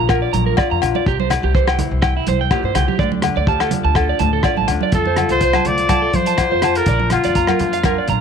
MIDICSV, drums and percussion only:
0, 0, Header, 1, 2, 480
1, 0, Start_track
1, 0, Key_signature, -1, "major"
1, 0, Tempo, 485437
1, 1039, Time_signature, 4, 2, 24, 8
1, 8114, End_track
2, 0, Start_track
2, 0, Title_t, "Drums"
2, 89, Note_on_c, 9, 37, 69
2, 92, Note_on_c, 9, 36, 88
2, 97, Note_on_c, 9, 68, 69
2, 188, Note_off_c, 9, 37, 0
2, 191, Note_off_c, 9, 36, 0
2, 196, Note_off_c, 9, 68, 0
2, 331, Note_on_c, 9, 42, 45
2, 339, Note_on_c, 9, 63, 61
2, 430, Note_off_c, 9, 42, 0
2, 438, Note_off_c, 9, 63, 0
2, 564, Note_on_c, 9, 68, 63
2, 572, Note_on_c, 9, 36, 95
2, 576, Note_on_c, 9, 37, 67
2, 663, Note_off_c, 9, 68, 0
2, 671, Note_off_c, 9, 36, 0
2, 675, Note_off_c, 9, 37, 0
2, 809, Note_on_c, 9, 68, 69
2, 819, Note_on_c, 9, 42, 49
2, 819, Note_on_c, 9, 64, 70
2, 908, Note_off_c, 9, 68, 0
2, 917, Note_off_c, 9, 42, 0
2, 918, Note_off_c, 9, 64, 0
2, 940, Note_on_c, 9, 63, 67
2, 1038, Note_off_c, 9, 63, 0
2, 1052, Note_on_c, 9, 36, 88
2, 1151, Note_off_c, 9, 36, 0
2, 1183, Note_on_c, 9, 63, 66
2, 1282, Note_off_c, 9, 63, 0
2, 1287, Note_on_c, 9, 64, 67
2, 1291, Note_on_c, 9, 68, 66
2, 1295, Note_on_c, 9, 37, 71
2, 1295, Note_on_c, 9, 42, 53
2, 1385, Note_off_c, 9, 64, 0
2, 1389, Note_off_c, 9, 68, 0
2, 1393, Note_off_c, 9, 37, 0
2, 1393, Note_off_c, 9, 42, 0
2, 1529, Note_on_c, 9, 36, 83
2, 1628, Note_off_c, 9, 36, 0
2, 1656, Note_on_c, 9, 68, 71
2, 1657, Note_on_c, 9, 37, 72
2, 1755, Note_off_c, 9, 68, 0
2, 1756, Note_off_c, 9, 37, 0
2, 1766, Note_on_c, 9, 63, 76
2, 1766, Note_on_c, 9, 64, 83
2, 1768, Note_on_c, 9, 42, 53
2, 1865, Note_off_c, 9, 63, 0
2, 1865, Note_off_c, 9, 64, 0
2, 1867, Note_off_c, 9, 42, 0
2, 2000, Note_on_c, 9, 37, 75
2, 2004, Note_on_c, 9, 36, 89
2, 2006, Note_on_c, 9, 68, 64
2, 2099, Note_off_c, 9, 37, 0
2, 2103, Note_off_c, 9, 36, 0
2, 2105, Note_off_c, 9, 68, 0
2, 2241, Note_on_c, 9, 42, 45
2, 2242, Note_on_c, 9, 63, 75
2, 2340, Note_off_c, 9, 42, 0
2, 2341, Note_off_c, 9, 63, 0
2, 2480, Note_on_c, 9, 36, 90
2, 2480, Note_on_c, 9, 37, 66
2, 2480, Note_on_c, 9, 68, 64
2, 2579, Note_off_c, 9, 36, 0
2, 2579, Note_off_c, 9, 37, 0
2, 2579, Note_off_c, 9, 68, 0
2, 2719, Note_on_c, 9, 37, 73
2, 2719, Note_on_c, 9, 42, 51
2, 2722, Note_on_c, 9, 68, 67
2, 2723, Note_on_c, 9, 64, 70
2, 2818, Note_off_c, 9, 37, 0
2, 2818, Note_off_c, 9, 42, 0
2, 2821, Note_off_c, 9, 64, 0
2, 2821, Note_off_c, 9, 68, 0
2, 2852, Note_on_c, 9, 63, 73
2, 2951, Note_off_c, 9, 63, 0
2, 2956, Note_on_c, 9, 36, 82
2, 3055, Note_off_c, 9, 36, 0
2, 3083, Note_on_c, 9, 63, 81
2, 3182, Note_off_c, 9, 63, 0
2, 3186, Note_on_c, 9, 37, 66
2, 3186, Note_on_c, 9, 42, 52
2, 3187, Note_on_c, 9, 64, 76
2, 3199, Note_on_c, 9, 68, 70
2, 3285, Note_off_c, 9, 37, 0
2, 3285, Note_off_c, 9, 42, 0
2, 3286, Note_off_c, 9, 64, 0
2, 3298, Note_off_c, 9, 68, 0
2, 3432, Note_on_c, 9, 36, 93
2, 3531, Note_off_c, 9, 36, 0
2, 3562, Note_on_c, 9, 37, 71
2, 3565, Note_on_c, 9, 68, 64
2, 3661, Note_off_c, 9, 37, 0
2, 3664, Note_off_c, 9, 68, 0
2, 3668, Note_on_c, 9, 63, 74
2, 3668, Note_on_c, 9, 64, 83
2, 3669, Note_on_c, 9, 42, 54
2, 3766, Note_off_c, 9, 63, 0
2, 3766, Note_off_c, 9, 64, 0
2, 3768, Note_off_c, 9, 42, 0
2, 3907, Note_on_c, 9, 37, 70
2, 3909, Note_on_c, 9, 36, 89
2, 3917, Note_on_c, 9, 68, 70
2, 4006, Note_off_c, 9, 37, 0
2, 4008, Note_off_c, 9, 36, 0
2, 4015, Note_off_c, 9, 68, 0
2, 4144, Note_on_c, 9, 42, 43
2, 4156, Note_on_c, 9, 63, 69
2, 4156, Note_on_c, 9, 64, 64
2, 4243, Note_off_c, 9, 42, 0
2, 4255, Note_off_c, 9, 63, 0
2, 4255, Note_off_c, 9, 64, 0
2, 4380, Note_on_c, 9, 37, 69
2, 4387, Note_on_c, 9, 36, 84
2, 4392, Note_on_c, 9, 68, 59
2, 4479, Note_off_c, 9, 37, 0
2, 4486, Note_off_c, 9, 36, 0
2, 4490, Note_off_c, 9, 68, 0
2, 4519, Note_on_c, 9, 63, 58
2, 4617, Note_off_c, 9, 63, 0
2, 4626, Note_on_c, 9, 64, 63
2, 4626, Note_on_c, 9, 68, 59
2, 4628, Note_on_c, 9, 42, 50
2, 4725, Note_off_c, 9, 64, 0
2, 4725, Note_off_c, 9, 68, 0
2, 4726, Note_off_c, 9, 42, 0
2, 4752, Note_on_c, 9, 63, 71
2, 4851, Note_off_c, 9, 63, 0
2, 4864, Note_on_c, 9, 42, 42
2, 4869, Note_on_c, 9, 36, 89
2, 4869, Note_on_c, 9, 64, 62
2, 4963, Note_off_c, 9, 42, 0
2, 4968, Note_off_c, 9, 36, 0
2, 4968, Note_off_c, 9, 64, 0
2, 4997, Note_on_c, 9, 63, 63
2, 5096, Note_off_c, 9, 63, 0
2, 5106, Note_on_c, 9, 37, 66
2, 5106, Note_on_c, 9, 42, 43
2, 5110, Note_on_c, 9, 63, 62
2, 5110, Note_on_c, 9, 64, 64
2, 5120, Note_on_c, 9, 68, 64
2, 5205, Note_off_c, 9, 37, 0
2, 5205, Note_off_c, 9, 42, 0
2, 5209, Note_off_c, 9, 63, 0
2, 5209, Note_off_c, 9, 64, 0
2, 5219, Note_off_c, 9, 68, 0
2, 5232, Note_on_c, 9, 42, 43
2, 5330, Note_off_c, 9, 42, 0
2, 5346, Note_on_c, 9, 42, 50
2, 5349, Note_on_c, 9, 36, 62
2, 5445, Note_off_c, 9, 42, 0
2, 5448, Note_off_c, 9, 36, 0
2, 5472, Note_on_c, 9, 37, 64
2, 5473, Note_on_c, 9, 68, 65
2, 5481, Note_on_c, 9, 63, 69
2, 5571, Note_off_c, 9, 37, 0
2, 5572, Note_off_c, 9, 68, 0
2, 5580, Note_off_c, 9, 63, 0
2, 5586, Note_on_c, 9, 42, 46
2, 5590, Note_on_c, 9, 64, 76
2, 5685, Note_off_c, 9, 42, 0
2, 5689, Note_off_c, 9, 64, 0
2, 5712, Note_on_c, 9, 42, 44
2, 5811, Note_off_c, 9, 42, 0
2, 5825, Note_on_c, 9, 37, 59
2, 5825, Note_on_c, 9, 42, 49
2, 5827, Note_on_c, 9, 36, 88
2, 5828, Note_on_c, 9, 68, 60
2, 5832, Note_on_c, 9, 63, 66
2, 5924, Note_off_c, 9, 37, 0
2, 5924, Note_off_c, 9, 42, 0
2, 5926, Note_off_c, 9, 36, 0
2, 5927, Note_off_c, 9, 68, 0
2, 5931, Note_off_c, 9, 63, 0
2, 6065, Note_on_c, 9, 42, 45
2, 6068, Note_on_c, 9, 36, 53
2, 6070, Note_on_c, 9, 63, 65
2, 6164, Note_off_c, 9, 42, 0
2, 6167, Note_off_c, 9, 36, 0
2, 6169, Note_off_c, 9, 63, 0
2, 6192, Note_on_c, 9, 42, 47
2, 6291, Note_off_c, 9, 42, 0
2, 6305, Note_on_c, 9, 37, 64
2, 6305, Note_on_c, 9, 42, 46
2, 6308, Note_on_c, 9, 68, 65
2, 6309, Note_on_c, 9, 36, 63
2, 6404, Note_off_c, 9, 37, 0
2, 6404, Note_off_c, 9, 42, 0
2, 6407, Note_off_c, 9, 68, 0
2, 6408, Note_off_c, 9, 36, 0
2, 6546, Note_on_c, 9, 37, 65
2, 6546, Note_on_c, 9, 42, 53
2, 6554, Note_on_c, 9, 64, 70
2, 6557, Note_on_c, 9, 68, 60
2, 6645, Note_off_c, 9, 37, 0
2, 6645, Note_off_c, 9, 42, 0
2, 6653, Note_off_c, 9, 64, 0
2, 6656, Note_off_c, 9, 68, 0
2, 6678, Note_on_c, 9, 42, 46
2, 6777, Note_off_c, 9, 42, 0
2, 6782, Note_on_c, 9, 42, 52
2, 6787, Note_on_c, 9, 64, 66
2, 6788, Note_on_c, 9, 36, 83
2, 6881, Note_off_c, 9, 42, 0
2, 6886, Note_off_c, 9, 64, 0
2, 6887, Note_off_c, 9, 36, 0
2, 6918, Note_on_c, 9, 63, 58
2, 7017, Note_off_c, 9, 63, 0
2, 7021, Note_on_c, 9, 37, 63
2, 7021, Note_on_c, 9, 42, 46
2, 7034, Note_on_c, 9, 63, 62
2, 7034, Note_on_c, 9, 64, 60
2, 7045, Note_on_c, 9, 68, 62
2, 7120, Note_off_c, 9, 37, 0
2, 7120, Note_off_c, 9, 42, 0
2, 7133, Note_off_c, 9, 63, 0
2, 7133, Note_off_c, 9, 64, 0
2, 7144, Note_off_c, 9, 68, 0
2, 7155, Note_on_c, 9, 42, 45
2, 7254, Note_off_c, 9, 42, 0
2, 7270, Note_on_c, 9, 42, 49
2, 7272, Note_on_c, 9, 36, 66
2, 7369, Note_off_c, 9, 42, 0
2, 7371, Note_off_c, 9, 36, 0
2, 7390, Note_on_c, 9, 37, 64
2, 7401, Note_on_c, 9, 68, 67
2, 7407, Note_on_c, 9, 63, 68
2, 7489, Note_off_c, 9, 37, 0
2, 7500, Note_off_c, 9, 68, 0
2, 7505, Note_off_c, 9, 63, 0
2, 7509, Note_on_c, 9, 42, 49
2, 7521, Note_on_c, 9, 64, 75
2, 7608, Note_off_c, 9, 42, 0
2, 7619, Note_off_c, 9, 64, 0
2, 7643, Note_on_c, 9, 42, 44
2, 7742, Note_off_c, 9, 42, 0
2, 7747, Note_on_c, 9, 37, 64
2, 7747, Note_on_c, 9, 42, 43
2, 7753, Note_on_c, 9, 36, 87
2, 7760, Note_on_c, 9, 63, 64
2, 7764, Note_on_c, 9, 68, 64
2, 7846, Note_off_c, 9, 37, 0
2, 7846, Note_off_c, 9, 42, 0
2, 7852, Note_off_c, 9, 36, 0
2, 7859, Note_off_c, 9, 63, 0
2, 7863, Note_off_c, 9, 68, 0
2, 7985, Note_on_c, 9, 42, 43
2, 7994, Note_on_c, 9, 36, 51
2, 8002, Note_on_c, 9, 63, 59
2, 8084, Note_off_c, 9, 42, 0
2, 8092, Note_off_c, 9, 36, 0
2, 8101, Note_off_c, 9, 63, 0
2, 8114, End_track
0, 0, End_of_file